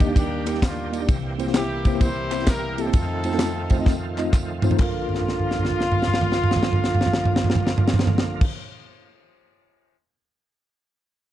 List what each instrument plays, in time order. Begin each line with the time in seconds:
Already playing: tine electric piano D#2 D#3, tonewheel organ D#3 G3 A#3 D4 G4, horn section A#3 D4 G4
0.00 tine electric piano D#4 G4 D#5, kick, ride bell, tambourine
0.06 tine electric piano A#3 D4 D#4 G4 D5
0.16 horn section A#3 D4 G4, kick, ride bell, tambourine
0.46 tine electric piano A#3 D4 D#4 G4 A#4, clap, ride bell, tambourine
0.54 snare
0.62 horn section A#3 D4 F4, kick, snare, clap, ride bell, tambourine
0.92 tine electric piano A#3 D4 D#4 G4 D5, ride bell, tambourine
1.01 tine electric piano A#3 D4 D#4 G4 D5
1.08 tine electric piano C2 C3, tonewheel organ E3 C4, kick, ride bell, tambourine
1.38 tine electric piano A#3 C4 E4 G4 C5, ride bell, tambourine
1.47 tine electric piano A#3 C4 E4 G4 C5, snare
1.54 horn section A#3 E4 G4, snare, clap, ride bell, tambourine
1.85 tine electric piano A#3 C4 E4 G4 C5, kick, ride bell, tambourine
1.93 tine electric piano A#3 C4 E4 G4 C5
1.99 horn section E4 G4 C5, kick, ride bell, tambourine
2.31 tine electric piano A#3 C4 E4 G4 C5, clap, ride bell, tambourine
2.39 snare
2.46 horn section A#4, kick, snare, clap, ride bell, tambourine
2.78 tine electric piano A#3 C4 E4 G4 A4, horn section C4 D#4 A4, ride bell, tambourine
2.85 tine electric piano A#3 C4 E4 G4 C5
2.93 tine electric piano F2, tonewheel organ D#3 F3 A3 C4 F4, kick, ride bell, tambourine
3.24 tine electric piano A3 C4 D#4 F4 C5, ride bell, tambourine
3.32 tine electric piano A3 C4 D#4 F4 A4, snare
3.39 snare, clap, ride bell, tambourine
3.70 tine electric piano A3 C4 D#4 F4 C5, kick, ride bell, tambourine
3.79 tine electric piano A3 C4 D#4 F4 D#5
3.86 kick, snare, tambourine
4.18 tine electric piano A3 C4 D#4 F4 D#5, clap, tambourine
4.33 kick, clap, tambourine
4.62 tine electric piano A3 C4 D#4 F4 C5, floor tom, tambourine
4.71 tine electric piano A3 C4 D#4 F4 C5, floor tom
4.77 tine electric piano A#1 D4 F4 A4, horn section F4, kick, clap, crash
4.81 tonewheel organ D3 F3 A#3 F4, tine electric piano A#4
5.09 floor tom
5.15 snare
5.21 floor tom
5.28 snare
5.39 floor tom
5.51 snare
5.59 floor tom
5.65 snare
5.71 floor tom
5.80 snare
5.92 floor tom
6.02 snare
6.08 floor tom
6.14 snare
6.21 floor tom
6.32 snare
6.44 floor tom
6.51 snare
6.56 floor tom
6.63 snare
6.73 floor tom
6.84 snare
6.95 floor tom
7.01 snare
7.06 floor tom
7.13 snare
7.25 floor tom
7.36 snare
7.44 floor tom
7.50 snare
7.55 floor tom
7.67 snare
7.78 floor tom
7.88 snare
7.94 floor tom
7.99 snare
8.07 floor tom
8.18 snare
8.41 kick, crash